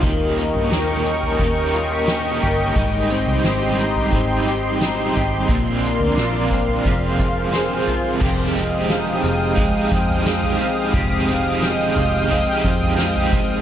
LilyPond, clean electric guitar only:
\new Staff \with { instrumentName = "Clean electric guitar" } { \time 4/4 \key f \minor \tempo 4 = 88 ees8 bes8 g'8 des'8 bes8 f'16 g'16 des'8 g'8 | aes8 c'8 g'8 ees'8 c'8 g'8 ees'8 g'8 | bes,8 bes8 f'8 c'8 f,8 f'8 c'8 f'8 | <f, g'>8 c'8 aes8 c'8 aes8 c'8 aes8 c'8 |
<f, g'>8 c'8 aes8 c'8 aes8 c'8 aes8 c'8 | }